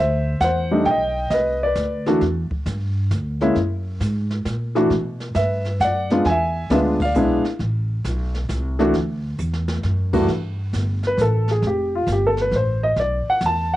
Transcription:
0.00 0.39 D2 medium
0.00 0.40 C5 medium
0.00 0.43 E5 medium
0.40 0.85 E2 medium
0.40 0.85 C5 medium
0.40 0.88 F#5 medium
0.40 kick soft
0.40 snare medium
0.40 hi-hat pedal medium
0.71 0.85 G3 medium
0.71 0.85 A3 medium
0.71 0.85 D4 medium
0.71 0.85 D#4 medium
0.85 1.29 B1 medium
0.85 1.28 G5 medium
0.85 brush sweep soft
0.85 kick soft
0.85 snare soft
0.90 1.29 D#5 medium
1.30 1.75 C2 medium
1.30 1.61 B4 medium
1.30 1.62 D#5 medium
1.30 kick soft
1.30 snare medium
1.30 hi-hat pedal medium
1.63 2.06 B4 medium
1.63 2.04 D5 medium
1.75 2.20 D2 medium
1.75 kick soft
1.75 snare medium
1.75 hi-hat pedal soft
2.06 2.20 E3 medium
2.06 2.20 A3 medium
2.06 2.20 D4 medium
2.06 2.21 F#4 medium
2.06 snare soft
2.21 2.49 E2 medium
2.21 brush sweep soft
2.21 kick soft
2.21 snare soft
2.51 muted upright bass stroke soft
2.51 kick medium
2.66 3.10 G2 loud
2.66 kick soft
2.66 snare medium
2.66 hi-hat pedal soft
3.11 3.55 D2 loud
3.11 kick soft
3.11 snare medium
3.11 hi-hat pedal soft
3.41 3.55 G#3 medium
3.41 3.55 A#3 medium
3.41 3.55 C#4 medium
3.41 3.55 E4 medium
3.41 snare soft
3.55 3.99 F#2 medium
3.55 brush sweep medium
3.55 kick soft
3.55 snare soft
4.00 4.44 G#2 medium
4.00 kick soft
4.00 snare medium
4.00 hi-hat pedal medium
4.30 snare soft
4.45 4.89 A#2 medium
4.45 kick soft
4.45 snare medium
4.45 hi-hat pedal medium
4.75 4.89 E3 medium
4.75 4.89 A3 medium
4.75 4.90 D4 medium
4.75 4.90 F#4 medium
4.75 snare soft
4.90 5.34 B2 medium
4.90 brush sweep soft
4.90 kick soft
4.90 snare soft
5.20 snare soft
5.35 5.79 G2 medium
5.35 5.79 B4 medium
5.35 5.77 E5 medium
5.35 kick soft
5.35 snare medium
5.35 hi-hat pedal medium
5.65 snare soft
5.80 6.24 F#2 medium
5.80 6.27 F#5 medium
5.80 kick soft
5.80 snare medium
5.80 hi-hat pedal medium
5.85 6.24 D5 medium
6.10 6.24 G#3 medium
6.10 6.24 B3 medium
6.10 6.24 D4 medium
6.10 6.25 F4 medium
6.10 snare soft
6.25 6.69 E2 medium
6.25 6.72 G#5 loud
6.25 brush sweep soft
6.25 kick soft
6.25 snare soft
6.30 6.69 E5 medium
6.70 7.14 D2 medium
6.70 6.98 G#3 medium
6.70 6.97 B3 medium
6.70 6.98 D4 medium
6.70 6.98 F4 medium
6.70 6.78 E5 medium
6.70 kick soft
6.70 snare medium
6.70 hi-hat pedal medium
6.75 6.81 B4 medium
7.00 7.43 F5 medium
7.00 kick medium
7.00 crash medium
7.05 7.45 D5 medium
7.15 7.43 B1 medium
7.15 7.42 G#3 medium
7.15 7.42 B3 medium
7.15 7.42 D4 medium
7.15 7.43 E4 medium
7.15 hi-hat pedal medium
7.44 muted upright bass stroke soft
7.44 snare soft
7.59 8.03 A1 medium
7.59 brush sweep soft
7.59 kick soft
7.59 snare soft
8.04 8.48 B1 loud
8.04 kick soft
8.04 snare medium
8.04 hi-hat pedal medium
8.34 snare soft
8.49 8.93 C2 medium
8.49 kick soft
8.49 snare medium
8.49 hi-hat pedal medium
8.79 8.93 E3 medium
8.79 8.93 A3 medium
8.79 8.93 D4 medium
8.79 8.93 F#4 medium
8.79 snare soft
8.94 9.37 D2 medium
8.94 brush sweep soft
8.94 kick soft
8.94 snare soft
9.38 9.82 E2 medium
9.38 hi-hat pedal medium
9.53 snare medium
9.68 snare medium
9.83 10.27 F#2 medium
9.83 snare medium
10.13 10.27 G2 medium
10.13 10.27 E3 medium
10.13 10.27 A3 medium
10.13 10.27 D4 medium
10.13 10.27 F#4 medium
10.13 kick medium
10.13 crash medium
10.28 10.72 G2 medium
10.28 brush sweep soft
10.28 kick soft
10.28 snare soft
10.73 11.17 G1 medium
10.73 kick soft
10.73 snare medium
10.73 hi-hat pedal medium
11.03 11.20 B4 medium
11.03 snare soft
11.17 11.61 A1 medium
11.17 11.49 A4 medium
11.17 kick soft
11.17 snare medium
11.17 hi-hat pedal soft
11.48 11.64 G#4 medium
11.48 snare soft
11.62 12.06 F1 medium
11.62 brush sweep soft
11.62 kick soft
11.62 snare soft
11.67 11.94 G4 medium
11.95 12.09 F4 medium
12.07 12.50 G1 medium
12.07 kick soft
12.07 snare medium
12.07 hi-hat pedal medium
12.12 12.25 G4 medium
12.27 12.39 A4 medium
12.37 snare soft
12.41 12.54 B4 medium
12.51 12.95 A1 medium
12.51 kick soft
12.51 snare soft
12.56 12.83 C5 medium
12.83 12.97 D#5 medium
12.96 13.24 B1 medium
12.96 13.27 D5 medium
12.96 brush sweep medium
12.96 kick soft
12.96 snare soft
13.26 13.43 F#5 medium
13.26 muted upright bass stroke soft
13.41 13.76 E2 medium
13.41 kick soft
13.41 snare medium
13.41 hi-hat pedal medium
13.46 13.73 A5 medium

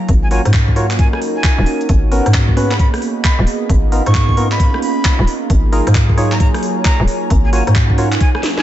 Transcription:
0.00 0.82 F#3 medium
0.00 1.85 F4 medium
0.00 0.82 C#5 medium
0.00 0.82 G#5 medium
0.00 0.82 A#5 medium
0.08 0.40 G#1 loud
0.08 5.23 A#3 medium
0.08 3.44 C#4 medium
0.08 2.54 D#4 medium
0.08 3.44 F#4 medium
0.08 kick loud
0.08 closed hi-hat medium
0.23 0.28 G#5 medium
0.28 0.42 F4 medium
0.28 0.42 F#4 medium
0.28 1.89 A#4 medium
0.28 0.42 A#4 medium
0.28 0.42 C#5 medium
0.28 0.40 G#5 medium
0.28 open hi-hat loud
0.45 1.08 G#2 medium
0.45 cross-stick medium
0.45 closed hi-hat medium
0.54 kick loud
0.54 clap loud
0.54 closed hi-hat medium
0.68 kick medium
0.76 0.87 F4 medium
0.76 0.87 F#4 medium
0.76 0.87 A#4 medium
0.76 0.87 C#5 medium
0.76 open hi-hat loud
0.91 clap medium
0.91 closed hi-hat soft
0.99 1.08 G#5 medium
0.99 kick loud
0.99 closed hi-hat medium
1.13 1.19 G#5 medium
1.13 cross-stick medium
1.22 open hi-hat loud
1.36 1.81 G#5 medium
1.44 kick loud
1.44 clap loud
1.44 closed hi-hat medium
1.58 1.65 D#1 loud
1.66 open hi-hat loud
1.81 closed hi-hat soft
1.89 2.21 G#1 loud
1.89 5.24 B3 medium
1.89 6.11 G#4 medium
1.89 kick loud
1.89 closed hi-hat medium
1.97 6.11 D#5 medium
2.12 2.28 B3 medium
2.12 2.28 C#4 medium
2.12 2.28 F#4 medium
2.12 2.28 A#4 medium
2.12 open hi-hat loud
2.26 2.88 G#2 medium
2.26 cross-stick medium
2.26 closed hi-hat medium
2.34 kick loud
2.34 clap loud
2.34 closed hi-hat medium
2.49 kick medium
2.57 2.73 B3 medium
2.57 2.73 C#4 medium
2.57 2.73 F#4 medium
2.57 2.73 B4 loud
2.57 open hi-hat loud
2.71 2.76 B5 medium
2.71 clap medium
2.79 2.89 B5 medium
2.79 kick loud
2.79 closed hi-hat medium
2.94 cross-stick medium
2.94 open hi-hat medium
3.02 open hi-hat loud
3.24 3.39 B5 medium
3.24 kick loud
3.24 clap loud
3.24 closed hi-hat medium
3.39 3.45 D#1 loud
3.47 5.92 C#4 medium
3.47 7.27 D#4 medium
3.47 8.17 F4 medium
3.47 open hi-hat loud
3.70 4.01 G#1 loud
3.70 kick loud
3.70 closed hi-hat medium
3.92 4.03 B3 medium
3.92 4.03 D#4 medium
3.92 4.03 F4 medium
3.92 4.03 A#4 medium
3.92 open hi-hat loud
4.06 4.69 G#2 medium
4.06 4.49 C#6 medium
4.06 cross-stick medium
4.06 closed hi-hat medium
4.15 5.93 F5 medium
4.15 kick loud
4.15 clap loud
4.15 closed hi-hat medium
4.29 kick medium
4.37 4.48 B3 medium
4.37 4.48 D#4 medium
4.37 4.48 F4 medium
4.37 4.48 A#4 medium
4.37 open hi-hat loud
4.51 4.81 B5 medium
4.51 clap medium
4.60 kick loud
4.60 closed hi-hat medium
4.74 cross-stick medium
4.82 5.33 B5 loud
4.82 open hi-hat loud
5.05 kick loud
5.05 clap loud
5.05 closed hi-hat medium
5.19 5.25 D#1 loud
5.27 7.69 F#3 medium
5.27 8.62 A#3 medium
5.27 7.28 G#4 medium
5.27 open hi-hat loud
5.50 5.82 G#1 loud
5.50 kick loud
5.50 closed hi-hat medium
5.54 7.69 C#5 loud
5.54 7.69 G#5 medium
5.72 5.88 D#4 medium
5.72 5.88 F4 medium
5.72 5.88 G#4 medium
5.72 5.88 A#4 medium
5.72 open hi-hat loud
5.86 6.49 G#2 medium
5.86 7.69 A#5 medium
5.86 cross-stick medium
5.86 closed hi-hat medium
5.95 kick loud
5.95 clap loud
5.95 closed hi-hat medium
6.09 kick medium
6.18 6.34 D#4 medium
6.18 6.34 F4 medium
6.18 6.34 G#4 medium
6.18 6.34 C#5 loud
6.18 open hi-hat loud
6.32 6.37 A#5 medium
6.32 clap medium
6.40 6.49 A#5 medium
6.40 kick loud
6.40 closed hi-hat medium
6.54 cross-stick medium
6.54 open hi-hat medium
6.63 open hi-hat loud
6.85 7.00 A#5 loud
6.85 kick loud
6.85 clap loud
6.85 closed hi-hat medium
7.00 7.06 D#1 loud
7.08 open hi-hat loud
7.30 7.62 G#1 loud
7.30 8.62 C#4 medium
7.30 8.59 D#4 medium
7.30 8.20 F#4 medium
7.30 kick loud
7.30 closed hi-hat medium
7.45 7.50 G#5 medium
7.53 7.64 F4 medium
7.53 7.64 F#4 medium
7.53 7.64 A#4 medium
7.53 7.64 C#5 medium
7.53 7.62 G#5 medium
7.53 open hi-hat loud
7.67 8.18 G#2 medium
7.67 8.59 A#4 medium
7.67 cross-stick medium
7.67 closed hi-hat medium
7.75 kick loud
7.75 clap loud
7.75 closed hi-hat medium
7.90 kick medium
7.98 8.09 F4 medium
7.98 8.09 F#4 medium
7.98 8.09 A#4 medium
7.98 8.09 C#5 medium
7.98 open hi-hat loud
8.12 clap medium
8.12 closed hi-hat soft
8.20 8.62 F#3 medium
8.20 8.62 F4 medium
8.20 8.62 G#4 medium
8.20 8.30 G#5 medium
8.20 kick loud
8.20 closed hi-hat medium
8.31 8.62 G#5 medium
8.35 8.40 G#5 medium
8.35 cross-stick medium
8.43 8.62 C#5 medium
8.43 snare medium
8.43 open hi-hat loud
8.57 8.62 G#5 loud
8.57 snare medium

